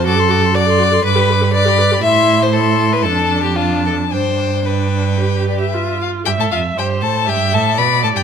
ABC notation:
X:1
M:4/4
L:1/16
Q:1/4=119
K:C
V:1 name="Violin"
d' c' d' c' d' c' d' c' d' b d' b d' b d' b | c'4 c'4 a4 a4 | g4 g6 d e3 f2 | g a f2 g2 a2 g2 a2 b2 a g |]
V:2 name="Violin"
A4 d4 B4 d4 | e3 c A3 B A3 G F2 A2 | c4 B8 z4 | G A F2 G2 A2 G2 A2 B2 A G |]
V:3 name="Viola"
^F A F A F A F A B G B G B G B G | E4 E4 D4 D4 | D4 D4 G4 F4 | e4 c4 e4 d4 |]
V:4 name="Cello" clef=bass
^F,,8 G,,8 | A,,8 F,,8 | G,,12- G,,2 z2 | G,, A,, F,,2 G,,2 A,,2 G,,2 A,,2 B,,2 A,, G,, |]